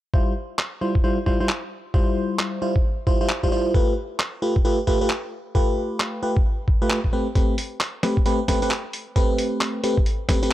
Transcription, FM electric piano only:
0.14 G3 E4 F4 C5
0.81 G3 E4 F4 C5
1.04 G3 E4 F4 C5
1.26 G3 E4 F4 C5
1.40 G3 E4 F4 C5
1.94 G3 E4 F4 C5
2.62 G3 E4 F4 C5
3.07 G3 E4 F4 C5
3.21 G3 E4 F4 C5
3.43 G3 E4 F4 C5
3.52 G3 E4 F4 C5
3.74 A3 F4 G4 B4
4.42 A3 F4 G4 B4
4.65 A3 F4 G4 B4
4.87 A3 F4 G4 B4
5.01 A3 F4 G4 B4
5.55 A3 F4 G4 B4
6.23 A3 F4 G4 B4
6.82 A3 F4 G4 B4
7.13 A3 C4 G4 B4
7.35 A3 C4 G4 B4
8.03 A3 C4 G4 B4
8.26 A3 C4 G4 B4
8.48 A3 C4 G4 B4
8.62 A3 C4 G4 B4
9.16 A3 C4 G4 B4
9.84 A3 C4 G4 B4
10.29 A3 C4 G4 B4
10.43 A3 C4 G4 B4

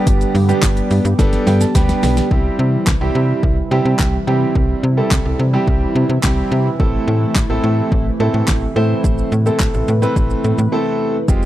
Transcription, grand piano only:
Already playing: G3 B3 D4 G4
0.48 G3 B3 D4 G4
1.19 G3 B3 D4 A4
1.47 G5
1.61 A5
1.75 G3 B3 D4 G4 B5
2.31 G3 C4 E4 G4
3.01 G3 C4 E4 G4
3.71 G3 C4 E4 G4
4.27 G3 C4 E4 G4
4.97 G3 C4 E4 A4
5.53 G3 C4 E4 G4
6.24 G3 C4 E4 G4
6.80 A3 C4 E4 A4
7.50 A3 C4 E4 A4
8.20 A3 C4 E4 A4
8.76 A3 C4 E4 C5
9.46 A3 C4 E4 A4
10.02 A3 C4 E4 B4
10.72 A3 C4 E4 A4
11.28 G#3 C4 F4 G4

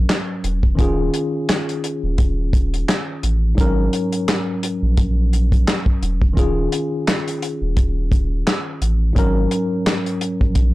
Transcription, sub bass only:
0.44 E1
0.79 D#1
2.03 D#1
3.23 A1
3.58 G#1
4.83 A#1
6.02 E1
6.37 D#1
7.62 D#1
8.82 A1
9.16 G#1
10.41 A#1

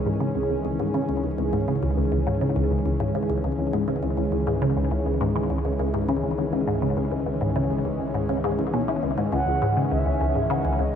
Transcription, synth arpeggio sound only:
0.06 G#2
0.20 C#3
0.35 C#2
0.50 C#2
0.65 C#2
0.80 G#2
0.94 C#3
1.09 C#2
1.24 C#2
1.38 C#2
1.53 G#2
1.68 C#3
1.83 C#2
1.97 C#2
2.12 C#2
2.27 G#2
2.41 C#3
2.56 C#2
2.71 C#2
2.86 C#2
3.00 G#2
3.15 C#3
3.30 C#2
3.44 C#2
3.59 C#2
3.73 G#2
3.88 C#3
4.03 C#2
4.18 C#2
4.32 C#2
4.47 G#2
4.62 C#3
4.77 C#2
4.91 C#2
5.06 C#2
5.21 G#2
5.36 C#3
5.50 C#2
5.65 C#2
5.79 C#2
5.94 G#2
6.09 C#3
6.23 C#2
6.38 C#2
6.53 C#2
6.67 G#2
6.82 C#3
6.97 C#2
7.12 C#2
7.26 C#2
7.41 G#2
7.56 C#3
7.71 C#2
7.85 C#2
8.00 C#2
8.14 G#2
8.29 C#3
8.44 G#2
8.59 C#2
8.73 B2
8.88 E3
9.03 C#2
9.18 G#2
9.32 C#2
9.47 C#2
9.62 G#2
9.77 C#3
9.91 C#2
10.06 C#2
10.21 C#2
10.35 G#2
10.50 C#3
10.65 C#2
10.79 C#2

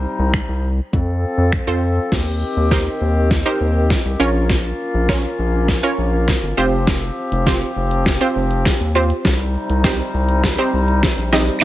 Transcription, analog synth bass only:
0.19 C2
0.48 C2
0.93 F2
1.38 F2
1.67 F2
2.12 D#2
2.57 D#2
3.01 D#2
3.60 D#2
4.05 C2
4.20 A#1
4.94 A#1
5.39 A#1
5.98 A#1
6.43 G1
6.58 F1
7.32 F1
7.76 F1
8.36 F1
8.80 D#2
9.25 C2
9.70 C2
10.14 C2
10.73 C2
11.18 A#1

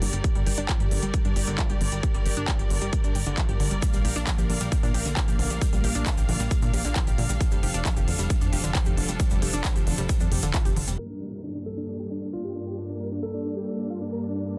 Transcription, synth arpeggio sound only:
0.02 D3
0.13 G3
0.24 G3
0.35 G3
0.47 G4
0.58 D4
0.69 F3
0.80 G4
0.91 D3
1.03 G3
1.14 G3
1.25 D4
1.36 G4
1.47 D3
1.59 F3
1.70 G4
1.81 D3
1.92 G3
2.03 G3
2.14 G3
2.26 G4
2.37 D4
2.48 F3
2.59 G4
2.70 D3
2.82 G3
3.04 D4
3.15 G4
3.26 D3
3.38 F3
3.49 G4
3.60 D3
3.71 G3
3.82 G3
3.94 G3
4.05 G4
4.16 D4
4.27 F3
4.38 G4
4.50 D3
4.61 G3
4.72 G3
4.83 D4
4.94 G4
5.06 D3
5.17 F3
5.28 G4
5.39 D3
5.50 G3
5.62 G3
5.73 G3
5.84 G4
5.95 D4
6.06 F3
6.18 G4
6.29 D3
6.40 G3
6.51 G3
6.62 D4
6.74 G4
6.85 D3
6.96 F3
7.07 G4
7.18 D3
7.29 G3
7.41 G3
7.52 G3
7.63 G4
7.74 D4
7.85 F3
7.97 G4
8.08 D3
8.19 G3
8.41 D4
8.53 G4
8.64 D3
8.75 F3
8.86 G4
8.97 D3
9.09 G3
9.20 G3
9.31 G3
9.42 G4
9.53 D4
9.65 F3
9.76 G4
9.87 D3
9.98 G3
10.09 G3
10.20 D4
10.32 G4
10.43 D3
10.54 F3
10.65 G4
10.76 D3
10.88 G3

